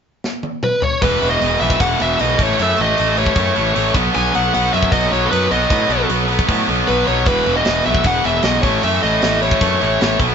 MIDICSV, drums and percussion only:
0, 0, Header, 1, 2, 480
1, 0, Start_track
1, 0, Tempo, 390371
1, 1257, Time_signature, 4, 2, 24, 8
1, 12725, End_track
2, 0, Start_track
2, 0, Title_t, "Drums"
2, 298, Note_on_c, 9, 38, 66
2, 421, Note_off_c, 9, 38, 0
2, 531, Note_on_c, 9, 48, 70
2, 654, Note_off_c, 9, 48, 0
2, 771, Note_on_c, 9, 47, 82
2, 894, Note_off_c, 9, 47, 0
2, 1008, Note_on_c, 9, 43, 87
2, 1131, Note_off_c, 9, 43, 0
2, 1254, Note_on_c, 9, 36, 100
2, 1254, Note_on_c, 9, 46, 64
2, 1377, Note_off_c, 9, 36, 0
2, 1377, Note_off_c, 9, 46, 0
2, 1501, Note_on_c, 9, 46, 50
2, 1624, Note_off_c, 9, 46, 0
2, 1740, Note_on_c, 9, 46, 62
2, 1863, Note_off_c, 9, 46, 0
2, 1977, Note_on_c, 9, 46, 46
2, 2092, Note_on_c, 9, 36, 82
2, 2100, Note_off_c, 9, 46, 0
2, 2215, Note_off_c, 9, 36, 0
2, 2215, Note_on_c, 9, 36, 96
2, 2215, Note_on_c, 9, 46, 69
2, 2338, Note_off_c, 9, 36, 0
2, 2338, Note_off_c, 9, 46, 0
2, 2459, Note_on_c, 9, 46, 50
2, 2582, Note_off_c, 9, 46, 0
2, 2698, Note_on_c, 9, 46, 66
2, 2821, Note_off_c, 9, 46, 0
2, 2937, Note_on_c, 9, 36, 95
2, 2943, Note_on_c, 9, 46, 49
2, 3060, Note_off_c, 9, 36, 0
2, 3066, Note_off_c, 9, 46, 0
2, 3185, Note_on_c, 9, 46, 65
2, 3308, Note_off_c, 9, 46, 0
2, 3419, Note_on_c, 9, 46, 46
2, 3542, Note_off_c, 9, 46, 0
2, 3661, Note_on_c, 9, 46, 60
2, 3784, Note_off_c, 9, 46, 0
2, 3898, Note_on_c, 9, 46, 43
2, 4014, Note_on_c, 9, 36, 81
2, 4021, Note_off_c, 9, 46, 0
2, 4123, Note_on_c, 9, 46, 63
2, 4131, Note_off_c, 9, 36, 0
2, 4131, Note_on_c, 9, 36, 92
2, 4246, Note_off_c, 9, 46, 0
2, 4254, Note_off_c, 9, 36, 0
2, 4377, Note_on_c, 9, 46, 46
2, 4500, Note_off_c, 9, 46, 0
2, 4621, Note_on_c, 9, 46, 66
2, 4744, Note_off_c, 9, 46, 0
2, 4851, Note_on_c, 9, 36, 102
2, 4858, Note_on_c, 9, 46, 46
2, 4974, Note_off_c, 9, 36, 0
2, 4980, Note_off_c, 9, 46, 0
2, 5094, Note_on_c, 9, 46, 62
2, 5217, Note_off_c, 9, 46, 0
2, 5343, Note_on_c, 9, 46, 51
2, 5466, Note_off_c, 9, 46, 0
2, 5587, Note_on_c, 9, 46, 63
2, 5710, Note_off_c, 9, 46, 0
2, 5828, Note_on_c, 9, 46, 50
2, 5933, Note_on_c, 9, 36, 80
2, 5951, Note_off_c, 9, 46, 0
2, 6050, Note_off_c, 9, 36, 0
2, 6050, Note_on_c, 9, 36, 87
2, 6057, Note_on_c, 9, 46, 67
2, 6172, Note_off_c, 9, 36, 0
2, 6180, Note_off_c, 9, 46, 0
2, 6307, Note_on_c, 9, 46, 50
2, 6430, Note_off_c, 9, 46, 0
2, 6549, Note_on_c, 9, 46, 71
2, 6672, Note_off_c, 9, 46, 0
2, 6784, Note_on_c, 9, 46, 49
2, 6907, Note_off_c, 9, 46, 0
2, 7013, Note_on_c, 9, 36, 106
2, 7015, Note_on_c, 9, 46, 66
2, 7136, Note_off_c, 9, 36, 0
2, 7138, Note_off_c, 9, 46, 0
2, 7253, Note_on_c, 9, 46, 50
2, 7376, Note_off_c, 9, 46, 0
2, 7496, Note_on_c, 9, 46, 62
2, 7619, Note_off_c, 9, 46, 0
2, 7726, Note_on_c, 9, 46, 47
2, 7849, Note_off_c, 9, 46, 0
2, 7855, Note_on_c, 9, 36, 81
2, 7975, Note_off_c, 9, 36, 0
2, 7975, Note_on_c, 9, 36, 91
2, 7976, Note_on_c, 9, 46, 65
2, 8098, Note_off_c, 9, 36, 0
2, 8099, Note_off_c, 9, 46, 0
2, 8223, Note_on_c, 9, 46, 45
2, 8346, Note_off_c, 9, 46, 0
2, 8457, Note_on_c, 9, 46, 63
2, 8580, Note_off_c, 9, 46, 0
2, 8699, Note_on_c, 9, 46, 48
2, 8822, Note_off_c, 9, 46, 0
2, 8922, Note_on_c, 9, 46, 59
2, 8932, Note_on_c, 9, 36, 108
2, 9045, Note_off_c, 9, 46, 0
2, 9055, Note_off_c, 9, 36, 0
2, 9177, Note_on_c, 9, 46, 49
2, 9300, Note_off_c, 9, 46, 0
2, 9407, Note_on_c, 9, 46, 62
2, 9418, Note_on_c, 9, 38, 102
2, 9530, Note_off_c, 9, 46, 0
2, 9541, Note_off_c, 9, 38, 0
2, 9639, Note_on_c, 9, 46, 46
2, 9762, Note_off_c, 9, 46, 0
2, 9769, Note_on_c, 9, 36, 84
2, 9886, Note_on_c, 9, 46, 67
2, 9892, Note_off_c, 9, 36, 0
2, 9892, Note_on_c, 9, 36, 94
2, 10009, Note_off_c, 9, 46, 0
2, 10015, Note_off_c, 9, 36, 0
2, 10137, Note_on_c, 9, 46, 51
2, 10260, Note_off_c, 9, 46, 0
2, 10362, Note_on_c, 9, 46, 71
2, 10373, Note_on_c, 9, 38, 113
2, 10485, Note_off_c, 9, 46, 0
2, 10496, Note_off_c, 9, 38, 0
2, 10612, Note_on_c, 9, 46, 50
2, 10613, Note_on_c, 9, 36, 96
2, 10735, Note_off_c, 9, 46, 0
2, 10736, Note_off_c, 9, 36, 0
2, 10859, Note_on_c, 9, 46, 70
2, 10982, Note_off_c, 9, 46, 0
2, 11107, Note_on_c, 9, 46, 51
2, 11230, Note_off_c, 9, 46, 0
2, 11337, Note_on_c, 9, 46, 67
2, 11348, Note_on_c, 9, 38, 102
2, 11460, Note_off_c, 9, 46, 0
2, 11471, Note_off_c, 9, 38, 0
2, 11588, Note_on_c, 9, 46, 49
2, 11698, Note_on_c, 9, 36, 83
2, 11711, Note_off_c, 9, 46, 0
2, 11818, Note_off_c, 9, 36, 0
2, 11818, Note_on_c, 9, 36, 92
2, 11825, Note_on_c, 9, 46, 68
2, 11941, Note_off_c, 9, 36, 0
2, 11948, Note_off_c, 9, 46, 0
2, 12068, Note_on_c, 9, 46, 48
2, 12190, Note_off_c, 9, 46, 0
2, 12310, Note_on_c, 9, 46, 62
2, 12321, Note_on_c, 9, 38, 107
2, 12433, Note_off_c, 9, 46, 0
2, 12444, Note_off_c, 9, 38, 0
2, 12536, Note_on_c, 9, 36, 98
2, 12545, Note_on_c, 9, 46, 47
2, 12659, Note_off_c, 9, 36, 0
2, 12668, Note_off_c, 9, 46, 0
2, 12725, End_track
0, 0, End_of_file